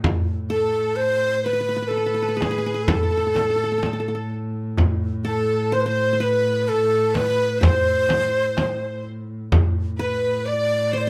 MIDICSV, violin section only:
0, 0, Header, 1, 2, 480
1, 0, Start_track
1, 0, Tempo, 947867
1, 19, Time_signature, 10, 3, 24, 8
1, 5619, End_track
2, 0, Start_track
2, 0, Title_t, "Violin section"
2, 0, Program_c, 0, 48
2, 262, Note_on_c, 0, 69, 74
2, 483, Note_off_c, 0, 69, 0
2, 501, Note_on_c, 0, 72, 83
2, 735, Note_on_c, 0, 71, 75
2, 739, Note_off_c, 0, 72, 0
2, 977, Note_off_c, 0, 71, 0
2, 977, Note_on_c, 0, 69, 68
2, 1217, Note_off_c, 0, 69, 0
2, 1223, Note_on_c, 0, 68, 67
2, 1461, Note_off_c, 0, 68, 0
2, 1468, Note_on_c, 0, 69, 73
2, 2183, Note_off_c, 0, 69, 0
2, 2663, Note_on_c, 0, 69, 72
2, 2885, Note_off_c, 0, 69, 0
2, 2902, Note_on_c, 0, 72, 79
2, 2966, Note_off_c, 0, 72, 0
2, 2973, Note_on_c, 0, 72, 75
2, 3129, Note_off_c, 0, 72, 0
2, 3145, Note_on_c, 0, 71, 88
2, 3382, Note_off_c, 0, 71, 0
2, 3385, Note_on_c, 0, 69, 75
2, 3622, Note_on_c, 0, 71, 88
2, 3623, Note_off_c, 0, 69, 0
2, 3861, Note_off_c, 0, 71, 0
2, 3862, Note_on_c, 0, 72, 84
2, 4582, Note_off_c, 0, 72, 0
2, 5059, Note_on_c, 0, 71, 81
2, 5284, Note_off_c, 0, 71, 0
2, 5299, Note_on_c, 0, 74, 81
2, 5538, Note_on_c, 0, 72, 92
2, 5540, Note_off_c, 0, 74, 0
2, 5602, Note_off_c, 0, 72, 0
2, 5619, End_track
0, 0, End_of_file